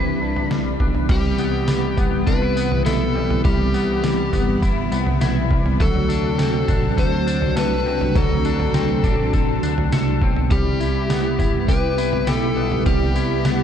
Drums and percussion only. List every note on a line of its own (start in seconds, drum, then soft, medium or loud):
0.36 floor tom medium
0.51 snare loud
0.80 kick medium
0.80 floor tom medium
0.95 floor tom medium
1.09 kick loud
1.09 floor tom loud
1.09 crash loud
1.09 tambourine medium
1.38 tambourine medium
1.68 snare loud
1.68 tambourine medium
1.97 kick medium
1.97 floor tom medium
1.97 tambourine medium
2.27 kick medium
2.27 tambourine medium
2.57 tambourine medium
2.72 floor tom medium
2.86 snare loud
2.86 tambourine loud
3.30 floor tom medium
3.45 kick loud
3.45 floor tom loud
3.45 tambourine medium
3.74 tambourine medium
4.04 snare loud
4.04 tambourine medium
4.33 kick loud
4.33 floor tom medium
4.33 tambourine medium
4.62 kick loud
4.62 tambourine medium
4.92 tambourine medium
5.07 floor tom medium
5.21 snare loud
5.21 tambourine loud
5.51 kick loud
5.66 floor tom medium
5.80 kick loud
5.80 floor tom loud
5.80 tambourine medium
6.10 tambourine medium
6.39 snare loud
6.39 tambourine medium
6.68 kick medium
6.68 floor tom medium
6.68 tambourine medium
6.98 kick medium
6.98 tambourine medium
7.28 tambourine medium
7.42 floor tom medium
7.57 snare loud
7.57 tambourine loud
8.01 floor tom medium
8.15 kick loud
8.15 floor tom loud
8.15 tambourine medium
8.45 tambourine medium
8.60 floor tom medium
8.74 snare loud
8.74 tambourine medium
9.04 kick loud
9.04 floor tom medium
9.04 tambourine medium
9.33 kick medium
9.33 tambourine medium
9.63 tambourine medium
9.78 floor tom medium
9.92 snare loud
9.92 tambourine loud
10.22 kick loud
10.36 floor tom medium
10.51 kick loud
10.51 floor tom loud
10.51 tambourine medium
10.81 tambourine medium
11.10 snare loud
11.10 tambourine medium
11.39 kick medium
11.39 floor tom medium
11.39 tambourine medium
11.68 kick medium
11.68 tambourine medium
11.98 tambourine medium
12.13 floor tom medium
12.27 snare loud
12.27 tambourine medium
12.72 floor tom medium
12.86 kick loud
12.86 floor tom loud
12.86 tambourine medium
13.16 tambourine medium
13.45 snare loud
13.45 tambourine medium